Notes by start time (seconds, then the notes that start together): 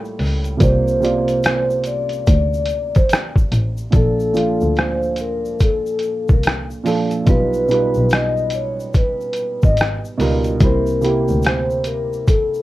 Already playing: A2 G3 A#3 F4 C#5
0.05 shaker
0.19 C#2, open hi-hat, shaker
0.44 closed hi-hat, shaker
0.57 C2 C3 A#3 F4 D5, kick, closed hi-hat
0.61 C5, shaker
0.88 shaker
1.00 C3 A#3 F4 D5, shaker
1.05 closed hi-hat
1.28 closed hi-hat, shaker
1.43 cross-stick, closed hi-hat, shaker
1.70 shaker
1.84 D5, closed hi-hat, shaker
2.09 closed hi-hat, shaker
2.27 D2 D5, kick, closed hi-hat, shaker
2.54 shaker
2.65 closed hi-hat, shaker
2.95 C5, kick, closed hi-hat, shaker
3.09 cross-stick, closed hi-hat, shaker
3.36 kick, shaker
3.52 A1, closed hi-hat, shaker
3.77 shaker
3.91 A#1 A#2 F3 D4 A4, kick, closed hi-hat, shaker
3.95 A4
4.20 shaker
4.33 A#2 F3 D4 F4, closed hi-hat, shaker
4.61 D2, shaker
4.76 C5, cross-stick, closed hi-hat, shaker
5.03 shaker
5.16 closed hi-hat, shaker
5.21 A#4
5.45 shaker
5.60 A4, kick, closed hi-hat, shaker
5.86 shaker
5.99 closed hi-hat, shaker
6.28 C2 A#4, kick, shaker
6.43 cross-stick, closed hi-hat, shaker
6.71 shaker
6.84 A#2 F3 D4 A4, open hi-hat, shaker
7.11 closed hi-hat, shaker
7.25 B1 B2 G3 D#4 F4 B4, kick, closed hi-hat, shaker
7.53 shaker
7.68 B2 G3 D#4 F4 B4, closed hi-hat, shaker
7.94 B1, shaker
8.09 D#5, cross-stick, closed hi-hat, shaker
8.37 shaker
8.50 closed hi-hat, shaker
8.55 C#5
8.80 shaker
8.94 B4, kick, closed hi-hat, shaker
9.21 shaker
9.33 closed hi-hat, shaker
9.62 G#1 D#5, kick, shaker
9.77 cross-stick, closed hi-hat, shaker
10.05 shaker
10.17 C#2 B2 G3 D#4 F4 A#4, open hi-hat, shaker
10.44 closed hi-hat, shaker
10.60 C2 C3 A#3 E4 A#4, kick, closed hi-hat, shaker
10.65 C5
10.87 shaker
11.01 C3 A#3 E4 G4, closed hi-hat, shaker
11.28 D2, shaker
11.42 C5, closed hi-hat, shaker
11.46 cross-stick
11.70 shaker
11.84 A#4, closed hi-hat, shaker
12.13 shaker
12.27 A4, kick, closed hi-hat, shaker
12.54 shaker